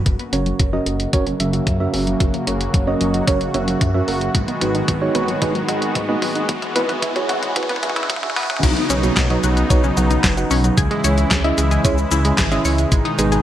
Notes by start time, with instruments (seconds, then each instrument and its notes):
0.06 detuned saw bass F#1, analog synth pad C#3 F#3 A#3 F#4, synth arpeggio sound F#3, kick, closed hi-hat, mid tom, riser
0.19 closed hi-hat
0.33 detuned saw bass F#1, synth arpeggio sound C#4, fm electric piano C#4 F#4 A#4 C#5, closed hi-hat
0.46 synth arpeggio sound F#3, closed hi-hat
0.59 detuned saw bass F#1, synth arpeggio sound F#4, kick, closed hi-hat, mid tom
0.73 synth arpeggio sound F#3, fm electric piano C#4 F#4 A#4 D#5
0.86 detuned saw bass F#1, synth arpeggio sound A#4, closed hi-hat
1.00 closed hi-hat
1.13 detuned saw bass F#1, synth arpeggio sound F#3, fm electric piano C#4 F#4 A#4 C#5, kick, closed hi-hat, mid tom
1.27 synth arpeggio sound C#4, closed hi-hat
1.40 detuned saw bass F#1, synth arpeggio sound F#3, fm electric piano C#4 F#4 A#4 E5, closed hi-hat
1.53 synth arpeggio sound F#4, closed hi-hat
1.67 detuned saw bass F#2, synth arpeggio sound F#3, kick, closed hi-hat, mid tom
1.80 fm electric piano C#4 F#4 A#4 E5
1.94 detuned saw bass F#1, synth arpeggio sound C#4, open hi-hat
2.07 synth arpeggio sound F#3, closed hi-hat
2.20 detuned saw bass F#1, synth arpeggio sound F#4, kick, closed hi-hat, mid tom
2.34 synth arpeggio sound F#3, closed hi-hat
2.47 detuned saw bass F#1, fm electric piano C#4 F#4 A#4 C#5, synth arpeggio sound A#4, closed hi-hat
2.61 closed hi-hat
2.74 detuned saw bass F#1, synth arpeggio sound F#3, kick, closed hi-hat, mid tom
2.87 synth arpeggio sound C#4, fm electric piano C#4 F#4 A#4 D#5
3.01 detuned saw bass F#1, synth arpeggio sound F#3, closed hi-hat
3.14 synth arpeggio sound F#4, closed hi-hat
3.27 detuned saw bass F#1, synth arpeggio sound F#3, fm electric piano C#4 F#4 A#4 C#5, kick, closed hi-hat, mid tom
3.41 closed hi-hat
3.54 detuned saw bass F#1, synth arpeggio sound C#4, fm electric piano C#4 F#4 A#4 E5, closed hi-hat
3.68 synth arpeggio sound F#3, closed hi-hat
3.81 detuned saw bass F#2, synth arpeggio sound F#4, kick, closed hi-hat, mid tom
3.94 synth arpeggio sound F#3, fm electric piano C#4 F#4 A#4 E5
4.08 detuned saw bass F#1, synth arpeggio sound A#4, open hi-hat
4.21 closed hi-hat
4.35 detuned saw bass G#1, analog synth pad D#3 B3, synth arpeggio sound F#3, kick, closed hi-hat, mid tom
4.48 synth arpeggio sound B3, closed hi-hat
4.61 detuned saw bass G#1, synth arpeggio sound F#3, fm electric piano D#4 F#4 G#4 B4, closed hi-hat, mid tom
4.75 synth arpeggio sound D#4, closed hi-hat
4.88 detuned saw bass G#1, synth arpeggio sound F#3, kick, closed hi-hat, mid tom
5.02 fm electric piano D#4 F#4 G#4 C#5
5.15 detuned saw bass G#1, synth arpeggio sound B3, closed hi-hat, mid tom
5.28 synth arpeggio sound F#3, closed hi-hat
5.42 detuned saw bass G#1, fm electric piano D#4 F#4 G#4 B4, synth arpeggio sound D#4, kick, closed hi-hat, mid tom
5.55 synth arpeggio sound F#3, closed hi-hat
5.69 detuned saw bass G#1, fm electric piano D#4 F#4 G#4 D#5, synth arpeggio sound F#4, closed hi-hat, mid tom
5.82 closed hi-hat
5.95 detuned saw bass G#2, synth arpeggio sound F#3, kick, closed hi-hat, mid tom
6.09 synth arpeggio sound B3, fm electric piano D#4 F#4 G#4 D#5
6.22 detuned saw bass G#1, synth arpeggio sound F#3, open hi-hat, mid tom
6.35 synth arpeggio sound D#4, closed hi-hat
6.49 detuned saw bass G#1, analog synth pad E3, synth arpeggio sound F#3, kick, closed hi-hat, mid tom
6.62 closed hi-hat, mid tom
6.76 detuned saw bass G#1, synth arpeggio sound B3, fm electric piano E4 F#4 G#4 B4, closed hi-hat, mid tom
6.89 synth arpeggio sound F#3, closed hi-hat, mid tom
7.02 detuned saw bass G#1, synth arpeggio sound E4, kick, closed hi-hat, mid tom
7.16 synth arpeggio sound F#3, fm electric piano E4 F#4 G#4 C#5, closed hi-hat, mid tom
7.29 detuned saw bass G#1, synth arpeggio sound F#4, closed hi-hat, mid tom
7.43 closed hi-hat, mid tom
7.56 detuned saw bass G#1, synth arpeggio sound F#3, fm electric piano E4 F#4 G#4 B4, kick, closed hi-hat, mid tom
7.63 mid tom
7.69 synth arpeggio sound B3, closed hi-hat, mid tom
7.76 mid tom
7.83 detuned saw bass G#1, synth arpeggio sound F#3, fm electric piano E4 F#4 G#4 E5, closed hi-hat, mid tom
7.90 mid tom
7.96 synth arpeggio sound E4, closed hi-hat, mid tom
8.03 mid tom
8.10 detuned saw bass G#2, synth arpeggio sound F#3, kick, closed hi-hat, mid tom
8.16 mid tom
8.23 fm electric piano E4 F#4 G#4 E5, mid tom
8.30 mid tom
8.36 detuned saw bass G#1, synth arpeggio sound B3, open hi-hat, mid tom
8.43 mid tom
8.50 synth arpeggio sound F#3, closed hi-hat, mid tom
8.56 mid tom
8.63 detuned saw bass B1, analog synth pad C#3 F#3 B3 D#4, synth arpeggio sound F#3, kick, closed hi-hat, crash, downlifter, shaker
8.77 closed hi-hat
8.90 detuned saw bass B1, synth arpeggio sound C#4, fm electric piano D#4 F#4 B4 C#5, closed hi-hat, shaker
9.03 synth arpeggio sound F#3, closed hi-hat, shaker
9.17 detuned saw bass B1, synth arpeggio sound D#4, kick, snare, clap, closed hi-hat, shaker
9.30 synth arpeggio sound F#3, fm electric piano D#4 F#4 B4 D#5, closed hi-hat
9.44 detuned saw bass B1, synth arpeggio sound F#4, closed hi-hat, shaker
9.57 closed hi-hat, shaker
9.70 detuned saw bass B1, synth arpeggio sound F#3, fm electric piano D#4 F#4 B4 C#5, kick, closed hi-hat, shaker
9.84 synth arpeggio sound C#4, shaker
9.97 detuned saw bass B1, synth arpeggio sound F#3, fm electric piano D#4 F#4 B4 F#5, closed hi-hat, shaker
10.11 synth arpeggio sound D#4, closed hi-hat, shaker
10.24 detuned saw bass F#1, synth arpeggio sound F#3, kick, snare, clap, closed hi-hat, shaker
10.37 fm electric piano D#4 F#4 B4 F#5, closed hi-hat, shaker
10.51 detuned saw bass B1, synth arpeggio sound C#4, open hi-hat, shaker
10.64 synth arpeggio sound F#3, closed hi-hat, shaker
10.77 detuned saw bass C#2, analog synth pad C#3 E3 G#3 E4, synth arpeggio sound G#4, kick, closed hi-hat, shaker
10.91 synth arpeggio sound G#3, closed hi-hat
11.04 detuned saw bass C#2, fm electric piano C#4 E4 G#4 C#5, synth arpeggio sound C#5, closed hi-hat, shaker
11.18 closed hi-hat, shaker
11.31 detuned saw bass C#2, synth arpeggio sound G#3, kick, snare, clap, closed hi-hat, shaker
11.44 fm electric piano C#4 E4 G#4 D#5, synth arpeggio sound E4, closed hi-hat
11.58 detuned saw bass C#2, synth arpeggio sound G#3, closed hi-hat, shaker
11.71 synth arpeggio sound G#4, closed hi-hat, shaker
11.85 detuned saw bass C#2, synth arpeggio sound G#3, fm electric piano C#4 E4 G#4 C#5, kick, closed hi-hat, shaker
11.98 shaker
12.11 detuned saw bass C#2, fm electric piano C#4 E4 G#4 E5, synth arpeggio sound E4, closed hi-hat, shaker
12.25 synth arpeggio sound G#3, closed hi-hat, shaker
12.38 detuned saw bass G#1, synth arpeggio sound G#4, kick, snare, clap, closed hi-hat, shaker
12.52 synth arpeggio sound G#3, fm electric piano C#4 E4 G#4 E5, closed hi-hat, shaker
12.65 detuned saw bass C#2, synth arpeggio sound C#5, open hi-hat, shaker
12.78 closed hi-hat, shaker
12.92 detuned saw bass G#1, analog synth pad B2 D#3 D#4, synth arpeggio sound G#3, kick, closed hi-hat, shaker
13.05 synth arpeggio sound D#4, closed hi-hat
13.19 detuned saw bass G#1, synth arpeggio sound G#3, fm electric piano B3 D#4 G#4 B4, closed hi-hat, shaker
13.32 synth arpeggio sound G#4, closed hi-hat, shaker